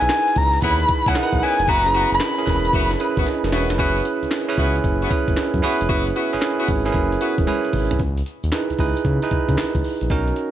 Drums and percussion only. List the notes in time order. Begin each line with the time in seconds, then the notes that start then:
0.01 closed hi-hat, shaker
0.09 snare, clap, closed hi-hat, tambourine, shaker
0.28 closed hi-hat, shaker
0.36 kick, open hi-hat, tambourine
0.54 closed hi-hat, shaker
0.62 kick, closed hi-hat, tambourine, shaker
0.80 closed hi-hat, shaker
0.89 kick, closed hi-hat, tambourine
1.06 kick, closed hi-hat, shaker
1.15 snare, clap, closed hi-hat, tambourine, shaker
1.33 kick, closed hi-hat, shaker
1.42 open hi-hat
1.59 closed hi-hat, shaker
1.68 kick, closed hi-hat, tambourine, shaker
1.86 closed hi-hat, shaker
1.94 closed hi-hat, tambourine
2.12 closed hi-hat, shaker
2.20 snare, clap, closed hi-hat, tambourine, shaker
2.39 closed hi-hat, shaker
2.47 kick, snare, open hi-hat, tambourine
2.65 closed hi-hat, shaker
2.73 kick, closed hi-hat, tambourine, shaker
2.91 snare, closed hi-hat, shaker
3.00 closed hi-hat, tambourine
3.17 kick, closed hi-hat, shaker
3.27 snare, closed hi-hat, shaker
3.44 snare, closed hi-hat, shaker
3.52 snare, open hi-hat
3.70 snare, closed hi-hat, shaker
3.79 kick, closed hi-hat, shaker
3.97 closed hi-hat, shaker
4.05 closed hi-hat, shaker
4.23 closed hi-hat, shaker
4.31 snare, clap, closed hi-hat, shaker
4.49 closed hi-hat, shaker
4.58 kick, open hi-hat
4.75 closed hi-hat, shaker
4.84 kick, closed hi-hat, shaker
5.02 closed hi-hat, shaker
5.10 kick, closed hi-hat, shaker
5.28 kick, closed hi-hat, shaker
5.37 snare, clap, closed hi-hat, shaker
5.54 kick, closed hi-hat, shaker
5.63 open hi-hat
5.81 closed hi-hat, shaker
5.89 kick, closed hi-hat, shaker
6.07 closed hi-hat, shaker
6.16 closed hi-hat, shaker
6.33 closed hi-hat, shaker
6.42 snare, clap, closed hi-hat, shaker
6.60 closed hi-hat, shaker
6.68 kick, open hi-hat
6.86 closed hi-hat, shaker
6.94 kick, closed hi-hat, shaker
7.12 closed hi-hat, shaker
7.21 closed hi-hat, shaker
7.38 kick, closed hi-hat, shaker
7.47 closed hi-hat, high tom, shaker
7.65 closed hi-hat, shaker
7.73 mid tom, open hi-hat
7.91 closed hi-hat, floor tom, shaker
7.99 kick, closed hi-hat, shaker
8.18 closed hi-hat, shaker
8.26 closed hi-hat, shaker
8.44 closed hi-hat, shaker
8.52 snare, clap, closed hi-hat, shaker
8.70 closed hi-hat, shaker
8.79 kick, open hi-hat
8.96 closed hi-hat, shaker
9.05 kick, closed hi-hat, shaker
9.22 closed hi-hat, shaker
9.31 kick, closed hi-hat, shaker
9.49 kick, closed hi-hat, shaker
9.57 snare, clap, closed hi-hat, shaker
9.75 kick, closed hi-hat, shaker
9.84 open hi-hat
10.01 closed hi-hat, shaker
10.10 kick, closed hi-hat, shaker
10.28 closed hi-hat, shaker
10.36 closed hi-hat, shaker